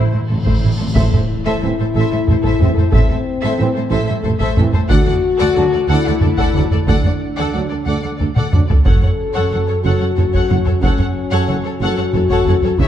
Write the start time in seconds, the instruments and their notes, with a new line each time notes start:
Already playing: viola section A3 E4, violin section C5, cymbal swell
0.05 timpani A2
0.11 timpani A2, cello section A2, viola section A3 E4, violin section C5
0.21 timpani A2
0.28 tuba A1, double bass section A1, timpani A2, cello section A2, viola section A3 C4, violin section A4
0.36 timpani A2
0.43 timpani A2, cello section A2, viola section A3 E4, violin section C5, taiko
0.50 timpani A2
0.58 timpani A2, violin section C5
0.62 double bass section A1, tuba A1, cello section A2, timpani A2, viola section A3 E4
0.72 timpani A2
0.77 timpani A2, cello section A2, viola section A3 C4, violin section A4
0.87 timpani A2
0.94 double bass section A1, tuba A1, cello section A2, timpani A2, french horn section E4, viola section A4, violin section C5 E5, taiko, impact
1.10 cello section A2, viola section A4, violin section C5 E5, taiko low-mid
1.44 cello section A2, viola section A4, violin section C5 E5
1.62 double bass section A1, tuba A1, cello section A2, trombone section E3 C4, viola section A4, violin section C5 E5
1.78 cello section A2, viola section A4, violin section A4 C5
1.94 tuba A1, double bass section A1, cello section A2, viola section A4, violin section E5
1.99 violin section C5
2.11 cello section A2, viola section A4, violin section C5 E5
2.26 tuba A1, double bass section A1, cello section A2, viola section A4, violin section A4 C5, taiko low-mid
2.42 cello section A2, viola section A4, violin section C5 E5, taiko
2.59 tuba A1, double bass section A1, cello section A2, trombone section E3 C4, viola section A4, taiko low-mid
2.63 violin section C5 E5
2.75 viola section A4, violin section A4, taiko low-mid
2.79 cello section A2, violin section C5
2.91 tuba A1, double bass section A1, cello section A2, french horn section C4, viola section A4, violin section C5 E5, taiko
3.08 cello section A2, viola section A4, violin section C5 E5, taiko low-mid
3.41 cello section A2, viola section A4, violin section C5 E5
3.58 tuba A1, double bass section A1, cello section A2, trombone section E3 C4, viola section A4, violin section C5 E5
3.74 cello section A2, viola section A4, violin section A4 C5
3.89 tuba A1, double bass section A1, cello section A2, french horn section A3, viola section A4, violin section C5 E5
4.06 cello section A2, viola section A4, violin section C5 E5
4.22 tuba A1, double bass section A1, cello section A2, viola section A4, violin section A4 C5, taiko low-mid
4.38 cello section A2, viola section A4, violin section C5 E5, taiko
4.55 tuba A1, double bass section A1, cello section A2, viola section A4, violin section C5 E5, taiko low-mid
4.59 trombone section E3 C4
4.72 cello section A2, viola section A4, violin section A4 C5, taiko low-mid
4.88 double bass section D2, tuba D2, cello section D2, french horn section F#4, viola section A4, violin section D5 F#5, taiko
5.05 cello section D2, viola section A4, violin section D5 F#5, taiko low-mid
5.38 cello section D2, viola section A4, violin section D5 F#5
5.55 double bass section D2, tuba D2, cello section D2, trombone section F#3 D4, viola section A4, violin section D5 F#5
5.72 cello section D2, viola section A4, violin section A4 D5
5.87 double bass section D2, tuba D2, french horn section E4, viola section A4, violin section F#5
5.91 cello section D2, violin section D5
6.03 viola section A4, violin section D5 F#5
6.08 cello section D2
6.20 double bass section D2, tuba D2, viola section A4, violin section A4 D5, taiko low-mid
6.25 cello section D2
6.36 viola section A4, violin section D5 F#5, taiko
6.40 cello section D2
6.54 double bass section D2, tuba D2, cello section D2, trombone section F#3 D4, viola section A4, violin section D5 F#5, taiko low-mid
6.70 cello section D2, viola section A4, violin section A4 D5, taiko low-mid
6.87 double bass section D2, tuba D2, cello section D2, french horn section D4, viola section A4, violin section D5 F#5, taiko
7.02 cello section D2, viola section A4, violin section D5 F#5, taiko low-mid
7.36 cello section D2, viola section A4, violin section D5 F#5
7.53 double bass section D2, tuba D2, cello section D2, trombone section F#3 D4, viola section A4, violin section D5 F#5
7.69 cello section D2, violin section A4 D5, viola section A4
7.85 double bass section D2, tuba D2, cello section D2, viola section A4, violin section D5 F#5
8.02 cello section D2, viola section A4, violin section D5 F#5
8.18 double bass section D2, tuba D2, cello section D2, violin section A4 D5, viola section A4, taiko low-mid
8.34 cello section D2, viola section A4, violin section D5 F#5, taiko mid
8.51 double bass section D2, cello section D2, tuba D2, trombone section F#3 D4, viola section A4, violin section D5 F#5, taiko low-mid
8.68 cello section D2, violin section A4 D5, viola section A4, taiko low
8.84 double bass section F#1, tuba F#1, cello section F#2, trombone section F#3 C#4, french horn section A4, viola section A4, violin section C#5 F#5, taiko
9.02 cello section F#2, viola section A4, violin section C#5 F#5, taiko low-mid
9.33 cello section F#2, viola section A4, violin section C#5 F#5
9.51 double bass section F#1, tuba F#1, cello section F#2, viola section A4, violin section C#5 F#5
9.66 cello section F#2, violin section A4 C#5, viola section A4
9.83 double bass section F#1, tuba F#1, cello section F#2, french horn section F#4, viola section A4, violin section C#5 F#5
9.98 cello section F#2, violin section C#5 F#5
10.02 viola section A4
10.16 double bass section F#1, tuba F#1, cello section F#2, violin section A4 C#5, viola section A4, taiko low-mid
10.33 cello section F#2, viola section A4, violin section C#5 F#5, taiko
10.49 double bass section F#1, tuba F#1, cello section F#2, viola section A4, violin section C#5 F#5, taiko low-mid
10.65 cello section F#2, violin section A4 C#5, viola section A4, taiko low-mid
10.81 tuba F#1, double bass section F#1, cello section F#2, french horn section C#4, viola section A4, violin section C#5 F#5, taiko
10.97 cello section F#2, viola section A4, violin section C#5 F#5, taiko low-mid
11.31 cello section F#2, viola section A4, violin section C#5 F#5
11.48 double bass section F#1, tuba F#1, cello section F#2, viola section A4, violin section C#5 F#5
11.63 cello section F#2, viola section A4, violin section A4 C#5
11.79 double bass section F#1, tuba F#1, cello section F#2, french horn section F#4, viola section A4, violin section C#5 F#5
11.97 cello section F#2, viola section A4, violin section C#5 F#5
12.13 double bass section F#1, tuba F#1, cello section F#2, violin section A4 C#5, viola section A4, taiko low-mid
12.29 cello section F#2, viola section A4, violin section C#5 F#5, taiko
12.46 double bass section F#1, tuba F#1, cello section F#2, viola section A4, violin section C#5 F#5, taiko low-mid
12.62 cello section F#2, viola section A4, violin section A4 C#5, taiko low-mid
12.78 double bass section C#2, tuba C#2, cello section C#3, trombone section C#4, french horn section E4, viola section G#4, violin section C#5 E5, taiko